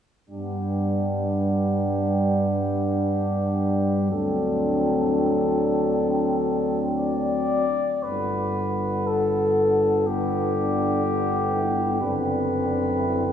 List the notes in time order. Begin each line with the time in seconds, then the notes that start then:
0.30 G2 G3 B3 D4 G4
4.11 D2 F#3 C4 D4 A4
6.97 D5
8.03 G1 D3 B3 B4
9.07 A4
10.06 D3 B3 G4
10.56 D4
11.06 B3
11.53 E4
12.01 F#1 D3 C4 D4 B4
12.97 E4